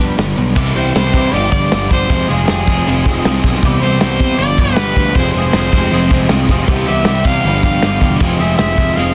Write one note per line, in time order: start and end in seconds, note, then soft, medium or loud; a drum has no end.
0.00 0.13 F1 medium
0.00 0.17 G3 loud
0.00 0.17 B3 medium
0.00 0.17 D4 loud
0.00 0.36 D4 medium
0.00 0.18 B4 loud
0.18 0.33 G1 loud
0.18 0.36 G3 medium
0.18 0.36 B3 medium
0.18 snare loud
0.18 open hi-hat medium
0.37 0.56 B1 medium
0.37 0.55 G3 medium
0.37 0.55 B3 medium
0.37 0.56 D4 medium
0.37 open hi-hat soft
0.56 0.71 C2 loud
0.56 0.74 C3 medium
0.56 0.74 E3 loud
0.56 0.74 G3 loud
0.56 0.75 B3 loud
0.56 0.75 E4 loud
0.56 0.75 G4 loud
0.56 kick loud
0.56 crash loud
0.75 0.91 C2 medium
0.75 0.94 C3 medium
0.75 0.93 E3 medium
0.75 0.95 G3 medium
0.75 0.95 B3 medium
0.75 0.96 E4 medium
0.75 0.96 G4 loud
0.75 0.93 C5 medium
0.75 crash medium
0.94 1.10 C2 medium
0.94 1.13 C3 loud
0.94 1.13 E3 loud
0.94 1.14 G3 loud
0.94 1.14 B3 loud
0.94 1.14 E4 loud
0.94 1.15 G4 loud
0.94 1.34 C5 loud
0.94 snare loud
0.94 tambourine loud
0.94 crash loud
1.14 1.29 C3 medium
1.14 1.32 C3 medium
1.14 1.32 E3 medium
1.14 1.33 G3 loud
1.14 1.33 B3 loud
1.14 1.33 E4 medium
1.14 1.33 G4 loud
1.14 kick loud
1.14 crash medium
1.32 1.48 G1 loud
1.32 1.51 G2 loud
1.32 1.51 D3 loud
1.32 1.52 F3 loud
1.32 1.52 G3 loud
1.32 1.52 B3 loud
1.32 1.51 D4 medium
1.32 1.53 G4 loud
1.32 1.51 D5 loud
1.32 crash medium
1.52 1.67 G1 medium
1.52 1.71 G2 medium
1.52 1.71 D3 medium
1.52 1.72 F3 medium
1.52 1.72 G3 medium
1.52 1.73 B3 medium
1.52 1.70 D4 medium
1.52 1.73 G4 loud
1.52 1.88 D5 loud
1.52 kick medium
1.52 crash medium
1.71 1.87 G1 loud
1.71 1.89 G2 loud
1.71 1.90 D3 medium
1.71 1.90 F3 loud
1.71 1.91 G3 loud
1.71 1.92 B3 loud
1.71 1.90 D4 loud
1.71 1.91 G4 loud
1.71 snare loud
1.71 tambourine medium
1.71 crash loud
1.90 2.06 G1 medium
1.90 2.08 G2 medium
1.90 2.09 D3 medium
1.90 2.09 F3 medium
1.90 2.09 G3 loud
1.90 2.10 B3 loud
1.90 2.09 D4 loud
1.90 2.10 G4 loud
1.90 2.27 C5 loud
1.90 kick medium
1.90 crash medium
2.09 2.25 F1 loud
2.09 2.27 F2 medium
2.09 2.28 C3 medium
2.09 2.29 F3 loud
2.09 2.29 G#3 loud
2.09 2.29 C4 medium
2.09 2.30 G#4 loud
2.09 kick loud
2.09 crash medium
2.28 2.45 F1 medium
2.28 2.47 F2 medium
2.28 2.47 C3 loud
2.28 2.48 F3 loud
2.28 2.49 G#3 loud
2.28 2.49 C4 loud
2.28 3.40 G#4 medium
2.28 2.50 G#4 medium
2.28 crash medium
2.48 2.64 F1 medium
2.48 2.66 F2 loud
2.48 2.66 C3 loud
2.48 2.67 F3 loud
2.48 2.67 G#3 loud
2.48 2.68 C4 loud
2.48 2.69 G#4 loud
2.48 snare loud
2.48 tambourine loud
2.48 crash medium
2.67 2.82 F1 medium
2.67 2.85 F2 medium
2.67 2.86 C3 medium
2.67 2.86 F3 loud
2.67 2.87 G#3 loud
2.67 2.87 C4 loud
2.67 2.88 G#4 loud
2.67 kick medium
2.67 crash medium
2.86 3.02 F1 loud
2.86 3.05 F2 loud
2.86 3.06 C3 loud
2.86 3.06 F3 loud
2.86 3.06 G#3 loud
2.86 3.07 C4 loud
2.86 3.08 G#4 loud
2.86 crash loud
3.06 3.20 F1 medium
3.06 3.24 F2 medium
3.06 3.25 C3 medium
3.06 3.25 F3 medium
3.06 3.26 G#3 medium
3.06 3.26 C4 loud
3.06 3.26 G#4 medium
3.06 kick loud
3.06 crash medium
3.24 3.40 C2 loud
3.24 3.43 F2 loud
3.24 3.44 C3 loud
3.24 3.44 F3 medium
3.24 3.45 G#3 medium
3.24 3.45 C4 loud
3.24 3.46 G#4 loud
3.24 snare loud
3.24 tambourine loud
3.24 crash loud
3.44 3.59 B1 medium
3.44 3.62 F2 medium
3.44 3.62 C3 loud
3.44 3.63 F3 loud
3.44 3.63 G#3 loud
3.44 3.63 C4 loud
3.44 3.63 G#4 loud
3.44 kick medium
3.44 crash medium
3.55 snare soft
3.63 3.78 C2 loud
3.63 3.83 C3 loud
3.63 3.83 E3 loud
3.63 3.83 G3 loud
3.63 3.84 B3 loud
3.63 3.83 C4 loud
3.63 3.85 G4 loud
3.63 kick loud
3.63 crash loud
3.81 3.97 C2 loud
3.81 4.01 C3 medium
3.81 4.01 E3 loud
3.81 4.01 G3 loud
3.81 4.02 B3 loud
3.81 4.02 C4 medium
3.81 3.99 C5 loud
3.81 crash medium
3.86 4.02 G4 loud
4.01 4.16 C2 medium
4.01 4.20 C3 loud
4.01 4.21 E3 loud
4.01 4.21 G3 loud
4.01 4.21 B3 loud
4.01 4.20 C4 loud
4.01 4.22 G4 loud
4.01 4.40 C5 loud
4.01 snare loud
4.01 tambourine loud
4.01 crash loud
4.20 4.35 C3 loud
4.20 4.39 C3 medium
4.20 4.39 E3 loud
4.20 4.39 G3 loud
4.20 4.39 B3 loud
4.20 4.38 C4 medium
4.20 4.40 G4 loud
4.20 kick loud
4.20 crash medium
4.38 4.54 G1 loud
4.38 4.58 G2 loud
4.38 4.58 D3 loud
4.38 4.59 F3 loud
4.38 4.60 G3 loud
4.38 4.60 B3 loud
4.38 4.58 D4 loud
4.38 4.61 D5 loud
4.38 crash medium
4.42 4.60 G4 loud
4.58 4.73 G1 medium
4.58 4.75 G2 medium
4.58 4.76 D3 medium
4.58 4.77 F3 medium
4.58 4.77 G3 loud
4.58 4.78 B3 medium
4.58 4.77 D4 medium
4.58 4.78 G4 medium
4.58 5.17 B4 loud
4.58 kick medium
4.58 crash medium
4.76 4.92 G1 loud
4.76 4.96 G2 loud
4.76 4.96 D3 loud
4.76 4.97 F3 loud
4.76 4.97 G3 loud
4.76 4.98 B3 loud
4.76 4.96 D4 loud
4.76 4.98 G4 loud
4.76 snare loud
4.76 tambourine medium
4.76 crash loud
4.96 5.11 D2 medium
4.96 5.15 G2 loud
4.96 5.15 D3 medium
4.96 5.15 F3 loud
4.96 5.16 G3 medium
4.96 5.16 B3 loud
4.96 5.15 D4 medium
4.96 5.16 G4 loud
4.96 kick medium
4.96 crash medium
5.06 snare soft
5.15 5.30 F1 loud
5.15 5.34 F2 medium
5.15 5.35 C3 loud
5.15 5.36 F3 medium
5.15 5.36 G#3 loud
5.15 5.37 C4 loud
5.15 5.32 C5 loud
5.15 kick loud
5.15 crash medium
5.19 5.37 G#4 loud
5.33 5.50 F1 loud
5.33 5.53 F2 medium
5.33 5.53 C3 loud
5.33 6.44 C5 loud
5.33 crash medium
5.37 5.54 F3 medium
5.37 5.55 G#3 loud
5.37 5.55 C4 loud
5.37 5.55 G#4 loud
5.53 5.68 F1 medium
5.53 5.72 F2 loud
5.53 5.72 C3 loud
5.53 5.72 F3 loud
5.53 5.73 G#3 loud
5.53 5.74 C4 loud
5.53 5.74 G#4 loud
5.53 snare loud
5.53 tambourine loud
5.53 crash medium
5.72 5.88 F1 loud
5.72 5.91 F2 medium
5.72 5.91 C3 medium
5.72 5.91 F3 loud
5.72 5.92 G#3 loud
5.72 5.93 C4 loud
5.72 5.92 G#4 medium
5.72 kick medium
5.72 crash medium
5.91 6.07 F1 loud
5.91 6.10 F2 loud
5.91 6.10 C3 loud
5.91 6.11 F3 loud
5.91 6.11 G#3 loud
5.91 6.12 C4 loud
5.91 6.12 G#4 loud
5.91 crash medium
6.10 6.26 F1 medium
6.10 6.29 F2 medium
6.10 6.29 C3 medium
6.10 6.29 F3 medium
6.10 6.30 G#3 medium
6.10 6.30 C4 loud
6.10 6.30 G#4 medium
6.10 kick loud
6.10 crash medium
6.29 6.46 C2 loud
6.29 6.47 F2 loud
6.29 6.48 C3 loud
6.29 6.49 F3 loud
6.29 6.49 G#3 loud
6.29 6.49 C4 loud
6.29 6.49 G#4 loud
6.29 snare loud
6.29 tambourine medium
6.29 crash loud
6.48 6.64 F1 medium
6.48 6.67 F2 medium
6.48 6.66 C3 medium
6.48 6.67 F3 medium
6.48 6.67 G#3 loud
6.48 6.68 C4 loud
6.48 6.68 G#4 medium
6.48 kick medium
6.48 crash medium
6.67 6.83 C2 loud
6.67 6.85 C3 medium
6.67 6.86 E3 medium
6.67 6.86 G3 loud
6.67 6.87 B3 loud
6.67 6.88 C4 loud
6.67 6.87 G4 loud
6.67 kick loud
6.67 crash loud
6.86 7.03 C2 loud
6.86 7.04 C3 medium
6.86 7.04 E3 medium
6.86 7.05 G3 loud
6.86 7.05 B3 medium
6.86 7.08 C4 medium
6.86 7.06 G4 loud
6.86 7.05 E5 medium
6.86 crash medium
7.05 7.22 C2 medium
7.05 7.23 C3 loud
7.05 7.24 E3 loud
7.05 7.24 G3 loud
7.05 7.25 B3 loud
7.05 7.25 G4 loud
7.05 7.27 E5 loud
7.05 snare loud
7.05 tambourine loud
7.05 crash loud
7.09 7.26 C4 loud
7.24 7.43 C3 loud
7.24 7.40 C3 medium
7.24 7.43 E3 loud
7.24 7.43 G3 medium
7.24 7.44 B3 loud
7.24 7.44 C4 medium
7.24 7.44 G4 loud
7.24 7.63 F5 loud
7.24 kick medium
7.24 crash medium
7.44 7.60 G1 loud
7.44 7.61 G2 loud
7.44 7.61 D3 loud
7.44 7.62 F3 loud
7.44 7.62 G3 loud
7.44 7.63 B3 loud
7.44 7.64 D4 medium
7.44 7.63 G4 loud
7.44 crash loud
7.62 7.78 G1 medium
7.62 7.81 G2 medium
7.62 7.81 D3 medium
7.62 7.81 F3 loud
7.62 7.82 G3 medium
7.62 7.83 B3 medium
7.62 7.83 D4 medium
7.62 7.83 G4 medium
7.62 8.17 F5 loud
7.62 kick medium
7.62 crash medium
7.82 7.97 G1 loud
7.82 8.00 G2 loud
7.82 8.00 D3 loud
7.82 8.01 F3 loud
7.82 8.01 G3 loud
7.82 8.02 B3 loud
7.82 8.02 D4 loud
7.82 8.02 G4 loud
7.82 snare loud
7.82 tambourine loud
7.82 crash loud
8.01 8.17 E1 medium
8.01 8.19 G2 medium
8.01 8.20 D3 medium
8.01 8.20 F3 loud
8.01 8.20 G3 medium
8.01 8.20 B3 medium
8.01 8.20 D4 loud
8.01 8.21 G4 loud
8.01 kick medium
8.01 crash medium
8.20 8.35 F1 loud
8.20 8.38 F2 loud
8.20 8.39 C3 medium
8.20 8.40 F3 loud
8.20 8.40 G#3 loud
8.20 8.41 C4 loud
8.20 8.41 G#4 loud
8.20 kick loud
8.20 crash loud
8.39 8.55 F1 loud
8.39 8.57 F2 medium
8.39 8.58 C3 loud
8.39 8.58 F3 medium
8.39 8.59 G#3 loud
8.39 8.59 C4 loud
8.39 8.60 G#4 loud
8.39 8.57 E5 medium
8.39 crash medium
8.58 8.74 F1 loud
8.58 8.77 F2 loud
8.58 8.77 C3 loud
8.58 8.78 F3 loud
8.58 8.78 G#3 loud
8.58 8.79 C4 loud
8.58 8.78 G#4 loud
8.58 8.97 E5 loud
8.58 snare loud
8.58 tambourine loud
8.58 crash medium
8.78 8.93 F1 medium
8.78 8.96 F2 loud
8.78 8.97 C3 loud
8.78 8.97 F3 medium
8.78 8.97 G#3 loud
8.78 8.98 C4 loud
8.78 8.99 G#4 loud
8.78 kick medium
8.78 crash medium
8.96 9.12 F1 loud
8.96 9.14 F2 loud
8.96 9.14 C3 loud
8.96 9.14 F3 loud
8.96 9.14 G#3 loud
8.96 9.14 C4 loud
8.96 9.14 F5 loud
8.96 crash medium
9.00 9.14 G#4 loud